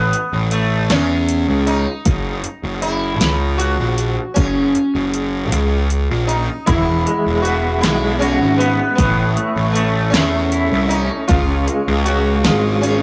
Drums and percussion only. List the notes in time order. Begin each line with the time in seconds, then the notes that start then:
0.13 closed hi-hat
0.51 closed hi-hat
0.90 snare, closed hi-hat
1.29 closed hi-hat
1.67 closed hi-hat
2.05 kick, closed hi-hat
2.44 closed hi-hat
2.82 closed hi-hat
3.21 snare, closed hi-hat
3.60 closed hi-hat
3.98 closed hi-hat
4.36 kick, closed hi-hat
4.75 closed hi-hat
5.14 closed hi-hat
5.52 closed hi-hat
5.90 closed hi-hat
6.29 closed hi-hat
6.67 kick, closed hi-hat
7.07 closed hi-hat
7.45 closed hi-hat
7.83 snare, closed hi-hat
8.22 closed hi-hat
8.61 closed hi-hat
8.98 kick, closed hi-hat
9.37 closed hi-hat
9.75 closed hi-hat
10.14 snare, closed hi-hat
10.52 closed hi-hat
10.91 closed hi-hat
11.29 kick, closed hi-hat
11.68 closed hi-hat
12.06 closed hi-hat
12.44 snare, closed hi-hat
12.83 closed hi-hat